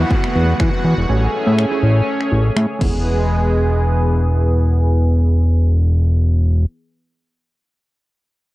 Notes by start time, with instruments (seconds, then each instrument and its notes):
Already playing: analog synth pad E3 B3 F#4, downlifter
0.00 synth pluck F#3 B3 E4 F#4, supersaw synth F#4 F#5
0.11 kick
0.24 finger snap
0.35 analog synth bass E2
0.60 analog synth bass E3, supersaw synth F#4 F#5, finger snap, kick
0.84 analog synth bass E2
0.98 analog synth bass E1
1.09 analog synth bass A1, synth pluck A3 C#4 E4 G#4, analog synth pad A3 C#4 G#4, supersaw synth C#4 C#5
1.34 supersaw synth E4 E5
1.46 analog synth bass A2, synth pluck A3 C#4 E4 G#4
1.59 finger snap
1.71 synth pluck A3 C#4 E4 G#4, supersaw synth C#4 C#5
1.83 analog synth bass A1
1.96 supersaw synth C#4 C#5
2.21 finger snap
2.32 analog synth bass A1
2.57 analog synth bass A2, finger snap
2.79 analog synth bass E1, analog synth pad E3 B3 G#4, synth pluck G#3 B3 E4, supersaw synth G#3, kick, crash
2.83 synth pluck G#4